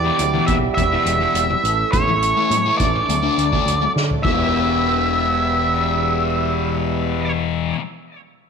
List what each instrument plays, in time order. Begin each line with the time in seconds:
Already playing: harmonium E3 G3 B3 E4 G4, lead electric guitar D5
0.05 distorted electric guitar E2 B2 E3
0.19 fingered electric bass D2, muted distorted electric guitar stroke, closed hi-hat
0.34 distorted electric guitar E2 B2 E3
0.47 fingered electric bass B1, lead electric guitar E5, kick, closed hi-hat
0.74 fingered electric bass E1, lead electric guitar E5, muted distorted electric guitar stroke, kick, closed hi-hat
0.92 distorted electric guitar E2 B2 E3
1.05 fingered electric bass E1, closed hi-hat
1.21 distorted electric guitar E2 B2 E3
1.34 fingered electric bass E1, closed hi-hat
1.50 muted distorted electric guitar stroke
1.62 fingered electric bass A1, harmonium A3 C#4 A4, closed hi-hat
1.92 fingered electric bass A1, lead electric guitar C#5, kick, closed hi-hat
2.08 muted distorted electric guitar stroke
2.22 closed hi-hat
2.37 distorted electric guitar A2 E3 A3
2.50 fingered electric bass A2, muted distorted electric guitar stroke, closed hi-hat
2.66 distorted electric guitar A2 E3 A3
2.78 fingered electric bass A1, lead electric guitar D5, kick, closed hi-hat
3.08 fingered electric bass D2, harmonium F#3 D4 F#4, muted distorted electric guitar stroke, closed hi-hat
3.23 distorted electric guitar D3 A3 D4
3.38 fingered electric bass D2, closed hi-hat
3.52 distorted electric guitar D3 A3 D4, kick
3.66 fingered electric bass D2, closed hi-hat
3.81 muted distorted electric guitar stroke
3.96 fingered electric bass D3, snare
4.11 floor tom
4.23 fingered electric bass E1, distorted electric guitar E2 B2, harmonium G3 B3 E4 G4 B4, lead electric guitar E5, kick, crash
4.28 distorted electric guitar E3